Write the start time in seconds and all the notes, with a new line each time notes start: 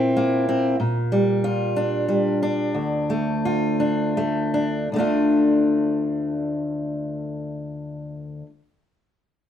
Already playing: A#2 A#3 C4 E4
0.17 A#3
0.49 C4
0.80 A#2
1.12 G3
1.44 F4
1.76 D4
2.08 G3
2.43 D4
2.74 D2
3.10 A3
3.45 F4
3.80 D4
4.17 A3
4.54 D4
4.92 D2 D3
4.96 A3 D4 F4